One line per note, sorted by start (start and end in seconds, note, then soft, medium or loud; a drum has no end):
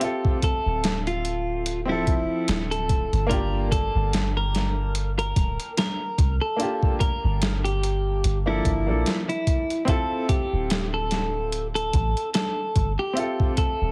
0.00 1.82 C4 medium
0.00 1.84 F4 medium
0.00 0.37 G4 loud
0.00 1.85 A4 medium
0.00 1.83 E5 medium
0.00 closed hi-hat medium
0.25 kick loud
0.42 1.01 A4 medium
0.42 kick medium
0.42 closed hi-hat medium
0.66 2.09 D1 loud
0.84 snare loud
0.84 closed hi-hat medium
1.07 1.80 F4 medium
1.07 closed hi-hat soft
1.25 closed hi-hat medium
1.66 closed hi-hat medium
1.85 3.24 C4 medium
1.85 3.25 E4 medium
1.85 2.62 E4 loud
1.90 3.26 F3 medium
1.90 3.27 A4 medium
2.07 2.28 F1 medium
2.07 kick loud
2.07 closed hi-hat medium
2.48 3.08 D1 medium
2.48 snare loud
2.48 closed hi-hat medium
2.71 3.25 A4 medium
2.71 closed hi-hat soft
2.89 kick medium
2.89 closed hi-hat medium
3.13 3.90 G1 loud
3.13 closed hi-hat soft
3.27 6.53 A#3 medium
3.27 6.54 D4 medium
3.27 3.67 A#4 loud
3.31 6.55 F4 medium
3.31 6.56 G4 loud
3.31 kick loud
3.31 closed hi-hat medium
3.72 4.29 A4 loud
3.72 kick medium
3.72 closed hi-hat medium
3.95 5.33 G1 loud
4.13 snare loud
4.13 closed hi-hat medium
4.37 5.09 A#4 medium
4.55 snare medium
4.55 closed hi-hat medium
4.95 closed hi-hat medium
5.19 5.72 A#4 loud
5.19 closed hi-hat soft
5.36 5.57 D1 loud
5.36 kick loud
5.36 closed hi-hat medium
5.60 closed hi-hat soft
5.77 6.35 A#4 loud
5.77 snare loud
5.77 closed hi-hat medium
6.18 6.39 C2 medium
6.18 kick medium
6.18 closed hi-hat medium
6.41 6.95 A4 medium
6.56 8.40 A#3 medium
6.56 8.41 D4 medium
6.56 8.42 F4 medium
6.56 closed hi-hat medium
6.62 8.43 G4 medium
6.83 kick loud
7.00 7.58 A#4 medium
7.00 kick loud
7.00 closed hi-hat medium
7.24 8.24 G1 loud
7.42 snare loud
7.42 closed hi-hat medium
7.64 8.37 G4 medium
7.64 closed hi-hat soft
7.83 closed hi-hat medium
8.24 8.61 G1 medium
8.24 closed hi-hat medium
8.46 8.84 F3 medium
8.46 8.83 A#3 medium
8.46 8.83 D4 medium
8.46 9.20 E4 loud
8.46 8.84 A4 medium
8.65 8.90 G1 loud
8.65 kick medium
8.65 closed hi-hat medium
8.86 9.04 A#1 medium
8.86 9.26 F3 medium
8.86 9.25 A#3 medium
8.86 9.26 D4 medium
8.86 9.27 A4 medium
9.06 snare loud
9.06 closed hi-hat medium
9.29 9.83 E4 medium
9.29 closed hi-hat soft
9.47 kick medium
9.47 closed hi-hat medium
9.70 closed hi-hat soft
9.85 13.11 C4 medium
9.85 13.12 E4 medium
9.85 kick loud
9.85 closed hi-hat medium
9.89 13.13 F4 medium
9.89 10.26 A4 medium
9.89 13.14 A4 medium
10.29 10.86 G4 medium
10.29 kick medium
10.29 closed hi-hat medium
10.53 11.90 D1 loud
10.70 snare loud
10.70 closed hi-hat medium
10.94 11.66 A4 medium
11.11 snare soft
11.11 closed hi-hat medium
11.52 closed hi-hat medium
11.75 12.29 A4 loud
11.75 closed hi-hat soft
11.93 12.14 A1 loud
11.93 kick medium
11.93 closed hi-hat medium
12.17 closed hi-hat soft
12.34 12.92 A4 medium
12.34 snare loud
12.34 closed hi-hat medium
12.76 12.96 G1 medium
12.76 kick medium
12.76 closed hi-hat medium
12.99 13.53 G4 loud
13.13 13.92 C4 medium
13.13 13.92 F4 medium
13.13 13.92 E5 medium
13.13 closed hi-hat medium
13.19 13.92 A4 medium
13.40 kick medium
13.57 13.92 A4 medium
13.57 kick medium
13.57 closed hi-hat medium
13.81 13.92 D1 loud